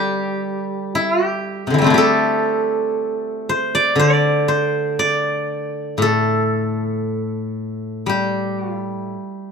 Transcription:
Already playing: D3 G3 G4 A4 C5
0.95 E4
1.26 G4
1.67 C3 D3
1.74 E3
1.78 G3 A3
1.84 C4 D4
1.90 E4 G4
1.98 A4
3.49 C5
3.75 D5
3.96 D3 D5
4.48 C5
4.99 D5
5.98 A2
6.02 A4
8.06 G3 G4
8.77 E4

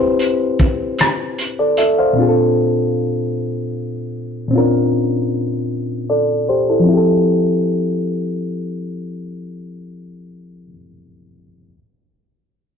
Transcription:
Already playing: C4 E4 G4 B4 C5
0.19 closed hi-hat
0.59 kick, closed hi-hat
0.99 cross-stick, closed hi-hat
1.38 closed hi-hat
1.59 A4 D5
1.77 A4 E5, closed hi-hat
1.99 C5 F5
2.13 A#2 C4
2.18 D4 F4
2.22 G#4
2.29 A4
4.49 A#2 C4
4.53 C#4 F4
4.58 D4 A#4
6.10 A4 D5
6.49 G4 C5
6.69 E4 A4
6.80 F3
6.84 C4
6.89 E4
6.93 G4
6.97 A4

